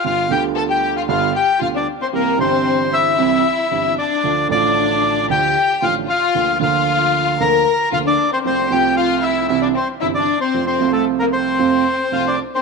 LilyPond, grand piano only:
\new Staff \with { instrumentName = "Grand piano" } { \clef bass \time 4/4 \key f \major \tempo 4 = 114 <g,, g, d g b f'>8 <d, d g b f'>4. <g,, g, d g b f'>8 r8 <d, d g b f'>8 r8 | <c, c e g c' g'>8 <g,, g, e g c' g'>4. <c, c e g c' g'>8 r8 <g,, g, e g c' g'>8 r8 | <d, d f a f'>8 <a,, a, d f a f'>4. <d, d f a f'>8 r8 <a,, a, d f a f'>8 r8 | <d, d f bes f'>8 <d, d f bes f'>4. <d, d f bes f'>8 r8 <d, d f bes f'>8 r8 |
<c, c f a f'>8 <c, c f a f'>4. <c, c e g e'>8 r8 <g,, g, c e g e'>8 r8 | <f, c f a f'>8 <c, c f a f'>4. <f, c f a f'>8 r8 <c, c f a f'>8 r8 | }